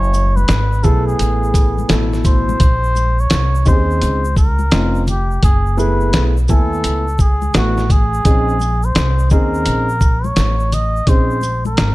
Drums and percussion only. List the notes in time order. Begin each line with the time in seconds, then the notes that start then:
0.03 shaker
0.14 high conga, shaker
0.37 high conga, shaker
0.48 snare, closed hi-hat, shaker
0.73 shaker
0.84 kick, low conga, shaker
1.09 shaker
1.19 closed hi-hat, high conga, shaker
1.44 shaker
1.54 kick, closed hi-hat, shaker
1.78 high conga, shaker
1.89 snare, closed hi-hat, shaker
2.13 snare, shaker
2.24 kick, closed hi-hat, low conga, shaker
2.49 high conga, shaker
2.60 kick, closed hi-hat, shaker
2.84 shaker
2.95 high conga, shaker
3.19 shaker
3.30 snare, closed hi-hat, shaker
3.55 shaker
3.66 kick, low conga, shaker
3.68 shaker
3.91 shaker
4.02 closed hi-hat, shaker
4.25 shaker
4.36 kick, shaker
4.59 high conga, shaker
4.72 snare, closed hi-hat, shaker
4.95 shaker
5.07 closed hi-hat, low conga, shaker
5.31 shaker
5.43 kick, closed hi-hat, shaker
5.66 shaker
5.78 high conga, shaker
5.79 shaker
6.00 shaker
6.13 snare, closed hi-hat, shaker
6.37 shaker
6.48 kick, low conga, shaker
6.50 shaker
6.73 shaker
6.84 closed hi-hat, shaker
7.08 shaker
7.18 kick, shaker
7.42 high conga, shaker
7.54 snare, closed hi-hat, shaker
7.78 snare, shaker
7.90 kick, closed hi-hat, low conga, shaker
8.14 shaker
8.25 kick, closed hi-hat, shaker
8.49 shaker
8.60 high conga, shaker
8.61 shaker
8.83 shaker
8.95 snare, closed hi-hat, shaker
9.19 shaker
9.30 kick, low conga, shaker
9.54 shaker
9.66 closed hi-hat, shaker
9.89 shaker
10.00 kick, shaker
10.24 high conga, shaker
10.36 snare, closed hi-hat, shaker
10.60 shaker
10.72 closed hi-hat, low conga, shaker
10.96 shaker
11.07 kick, closed hi-hat, shaker
11.30 shaker
11.41 high conga, shaker
11.43 shaker
11.65 high conga, shaker
11.77 snare, closed hi-hat, shaker